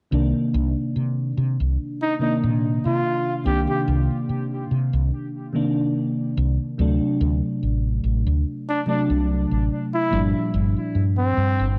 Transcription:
0.11 0.31 C2 medium
0.11 2.16 C3 medium
0.11 2.16 D#3 medium
0.11 2.17 A#3 medium
0.11 2.17 D4 medium
0.54 0.73 C2 medium
0.96 1.31 C3 medium
1.37 1.56 C3 medium
1.60 1.76 C2 medium
2.03 2.14 D#4 medium
2.19 3.40 C3 medium
2.19 3.41 D#3 medium
2.19 3.41 A#3 medium
2.19 3.42 D4 medium
2.19 2.36 D#4 medium
2.43 2.78 A#2 medium
2.85 3.01 C3 medium
2.85 3.35 F4 medium
3.44 3.65 C2 medium
3.44 5.49 C3 medium
3.44 5.49 D#3 medium
3.44 5.50 A#3 medium
3.44 5.50 D4 medium
3.44 3.61 G4 medium
3.69 3.81 G4 medium
3.88 4.07 C2 medium
4.10 muted fretless electric bass stroke soft
4.29 4.65 C3 medium
4.71 4.90 C3 medium
4.93 5.09 C2 medium
5.53 6.74 C3 medium
5.53 6.75 D#3 medium
5.53 6.75 A#3 medium
5.53 6.75 D4 medium
6.37 6.56 C2 medium
6.78 6.98 D2 medium
6.78 8.82 C3 medium
6.78 8.83 F#3 medium
6.78 8.83 A3 medium
6.78 8.84 D4 medium
7.21 7.40 D2 loud
7.63 7.98 A1 medium
8.04 8.23 A1 medium
8.27 8.43 D2 medium
8.69 8.81 D4 medium
8.86 10.07 C3 medium
8.86 10.08 F#3 medium
8.86 10.08 A3 medium
8.86 9.02 D4 medium
8.86 10.09 D4 medium
9.10 9.44 C2 medium
9.51 9.68 A1 medium
9.94 10.22 E4 medium
10.10 10.32 G1 medium
10.10 11.79 A#2 medium
10.10 11.79 F3 medium
10.10 11.79 G3 medium
10.10 11.79 D4 medium
10.54 10.73 G1 medium
10.76 muted fretless electric bass stroke soft
10.95 11.31 G2 medium
11.18 11.67 C4 medium
11.37 11.56 G2 medium
11.60 11.79 G1 medium

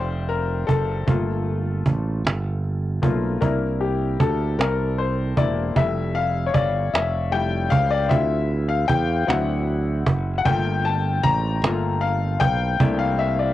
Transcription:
0.00 0.65 F1 medium
0.00 1.10 G3 soft
0.00 1.09 C4 soft
0.00 1.10 D4 soft
0.00 0.26 C5 medium
0.00 1.10 D5 medium
0.00 1.10 E5 medium
0.00 1.09 F5 medium
0.00 1.10 G5 medium
0.28 0.69 A#4 medium
0.28 cajon slap soft
0.67 1.05 F#1 medium
0.67 2.59 A4 medium
0.67 cajon bass medium
1.07 1.82 G1 medium
1.07 1.59 A3 soft
1.07 1.60 A#3 soft
1.07 1.60 F4 medium
1.07 cajon bass loud
1.46 cajon slap soft
1.86 2.22 A1 medium
1.86 cajon bass medium
2.25 2.99 G1 medium
2.25 cajon slap loud
2.64 cajon slap soft
3.02 3.39 B1 medium
3.02 3.38 A3 soft
3.02 3.38 A#3 soft
3.02 3.38 F4 medium
3.02 cajon bass medium
3.41 4.16 C2 medium
3.41 5.35 A#3 soft
3.41 5.36 D4 soft
3.41 5.36 E4 soft
3.41 3.82 A#4 medium
3.41 cajon bass medium
3.80 4.21 G4 medium
3.80 cajon slap soft
4.20 4.56 D2 medium
4.20 4.60 A4 medium
4.20 cajon bass medium
4.20 cajon slap soft
4.59 5.33 C2 medium
4.59 4.96 A#4 medium
4.59 cajon slap loud
4.99 5.35 C5 medium
4.99 cajon slap soft
5.37 5.73 E1 medium
5.37 5.72 A#3 soft
5.37 5.73 D4 soft
5.37 5.72 E4 medium
5.37 5.78 D5 medium
5.37 cajon bass medium
5.76 6.51 F1 medium
5.76 6.28 G3 soft
5.76 6.28 A3 soft
5.76 6.29 E4 medium
5.76 6.13 E5 medium
5.76 cajon bass loud
6.15 6.45 F5 medium
6.15 cajon slap soft
6.47 6.54 C#5 medium
6.54 6.91 G1 medium
6.54 6.63 D5 medium
6.54 cajon bass medium
6.94 7.68 F1 medium
6.94 7.34 E5 medium
6.94 cajon slap loud
7.31 7.67 G3 soft
7.31 7.67 A3 soft
7.31 7.68 E4 soft
7.31 7.73 G5 medium
7.31 cajon slap soft
7.70 8.08 C#2 medium
7.70 7.75 F5 loud
7.70 cajon bass medium
7.91 8.11 D5 medium
8.08 8.85 D2 loud
8.08 9.23 C4 soft
8.08 9.24 E4 soft
8.08 9.23 F4 soft
8.08 8.65 E5 medium
8.08 cajon bass medium
8.50 cajon slap soft
8.68 8.87 F5 medium
8.88 9.25 E2 medium
8.88 9.25 G5 medium
8.88 cajon bass medium
9.27 10.03 D2 medium
9.27 9.80 F#3 soft
9.27 9.80 C4 soft
9.27 9.80 E4 medium
9.27 10.03 F#5 medium
9.27 cajon slap loud
9.68 cajon slap soft
10.06 10.43 F#1 medium
10.06 cajon bass loud
10.38 10.45 F#5 medium
10.45 11.20 G1 loud
10.45 11.63 A3 medium
10.45 11.63 A#3 soft
10.45 11.64 F4 medium
10.45 10.82 G5 loud
10.45 cajon bass medium
10.84 11.21 A5 medium
10.84 cajon slap soft
11.24 11.60 A1 loud
11.24 11.98 A#5 loud
11.24 cajon bass medium
11.62 12.37 G1 medium
11.62 11.99 A3 soft
11.62 11.99 A#3 soft
11.62 12.00 F4 medium
11.62 cajon slap loud
12.01 12.42 F5 medium
12.40 12.77 B1 medium
12.40 12.96 G5 loud
12.40 cajon bass loud
12.80 13.54 C2 loud
12.80 13.54 A3 medium
12.80 13.54 A#3 soft
12.80 13.54 D4 soft
12.80 13.54 E4 medium
12.80 cajon bass loud
12.99 13.04 F5 medium
13.19 13.40 E5 medium
13.19 cajon slap soft
13.39 13.54 D5 medium

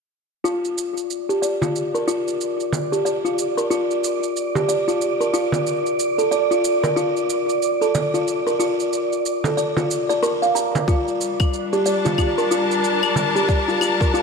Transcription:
0.44 1.08 F4 medium
0.44 14.22 D5 medium
0.44 shaker soft
0.65 shaker soft
0.78 shaker medium
0.97 shaker soft
1.10 shaker soft
1.29 1.37 G4 medium
1.29 shaker soft
1.42 1.60 D5 medium
1.42 shaker medium
1.62 1.69 F4 medium
1.62 frame drum medium
1.62 shaker soft
1.76 shaker soft
1.94 2.07 A#4 medium
1.94 shaker soft
2.07 2.71 F4 medium
2.07 shaker medium
2.28 shaker soft
2.41 shaker soft
2.60 shaker soft
2.73 frame drum medium
2.73 shaker medium
2.92 3.00 G4 medium
2.92 shaker soft
3.05 3.23 D5 medium
3.05 shaker soft
3.25 3.32 F4 medium
3.25 shaker soft
3.39 shaker medium
3.57 3.70 A#4 medium
3.57 shaker soft
3.70 4.34 F4 medium
3.70 shaker soft
3.91 shaker soft
4.04 shaker medium
4.23 shaker soft
4.37 shaker soft
4.55 4.63 G4 medium
4.55 frame drum medium
4.55 shaker soft
4.69 4.86 D5 medium
4.69 shaker medium
4.88 4.95 F4 medium
4.88 shaker soft
5.01 shaker soft
5.21 5.33 A#4 medium
5.21 shaker soft
5.33 5.66 F4 medium
5.33 shaker medium
5.52 frame drum medium
5.52 shaker soft
5.67 shaker soft
5.86 shaker soft
5.99 shaker medium
6.18 6.26 A4 medium
6.18 shaker soft
6.31 6.49 D5 medium
6.31 shaker soft
6.51 6.58 F4 medium
6.51 shaker soft
6.64 shaker medium
6.83 6.96 A#4 medium
6.83 frame drum medium
6.83 shaker soft
6.96 7.60 F4 medium
6.96 shaker soft
7.17 shaker soft
7.30 shaker medium
7.49 shaker soft
7.62 shaker soft
7.81 7.89 A4 medium
7.81 shaker soft
7.95 8.12 D5 medium
7.95 frame drum medium
7.95 shaker medium
8.14 8.21 F4 medium
8.14 shaker soft
8.28 shaker soft
8.47 8.59 A#4 medium
8.47 shaker soft
8.60 9.24 F4 medium
8.60 shaker medium
8.80 shaker soft
8.93 shaker soft
9.13 shaker soft
9.26 shaker medium
9.44 9.52 A4 medium
9.44 frame drum medium
9.44 shaker soft
9.57 9.75 D5 medium
9.57 shaker soft
9.77 9.84 F4 medium
9.77 frame drum medium
9.77 shaker soft
9.91 shaker medium
10.09 10.17 D5 medium
10.09 shaker soft
10.23 10.40 A#4 medium
10.23 shaker soft
10.42 10.54 F5 medium
10.42 shaker soft
10.55 10.66 A#5 medium
10.55 shaker medium
10.75 frame drum medium
10.75 shaker soft
10.88 14.22 G3 medium
10.88 11.52 F4 medium
10.88 kick loud
10.88 shaker soft
11.08 shaker soft
11.21 shaker medium
11.40 kick loud
11.40 claves medium
11.40 shaker soft
11.44 14.22 D4 medium
11.54 shaker soft
11.73 11.80 G4 medium
11.73 shaker soft
11.83 12.03 D5 medium
11.83 14.22 A5 medium
11.83 shaker medium
12.05 12.13 F4 medium
12.05 frame drum medium
12.05 shaker soft
12.14 14.22 A#4 medium
12.18 12.36 F4 medium
12.18 kick medium
12.18 claves medium
12.18 shaker soft
12.38 12.50 A#4 medium
12.38 shaker soft
12.51 13.15 F4 medium
12.51 shaker medium
12.71 shaker soft
12.84 shaker soft
13.03 claves medium
13.03 shaker soft
13.16 frame drum medium
13.16 shaker medium
13.36 13.43 G4 medium
13.36 shaker soft
13.49 13.66 D5 medium
13.49 kick loud
13.49 shaker soft
13.68 13.76 F4 medium
13.68 shaker soft
13.81 13.99 F4 medium
13.81 claves medium
13.81 shaker medium
14.01 14.13 A#4 medium
14.01 kick loud
14.01 shaker soft
14.14 14.22 F4 medium
14.14 shaker soft

